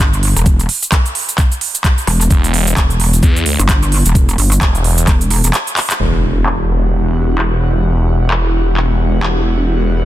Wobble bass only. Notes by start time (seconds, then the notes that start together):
Already playing: G1
0.36 E1
2.07 E1
2.77 E1
3.59 G1
4.05 E1
4.38 G1
5.07 E1
5.44 E1